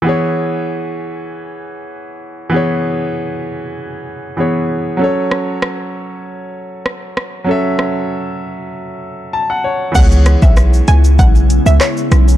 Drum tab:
CC |----------------|----------------|----------------|----------------|
HH |----------------|----------------|----------------|----------------|
SH |----------------|----------------|----------------|----------------|
CP |----------------|----------------|----------------|----------------|
SD |----------------|----------------|--r-r-------r-r-|--r-------------|
BD |----------------|----------------|----------------|----------------|

CC |x---------------|
HH |--x---x---x---x-|
SH |xxxxxxxxxxxxxxxx|
CP |------------x---|
SD |--r-r-------r-r-|
BD |o--o----o-------|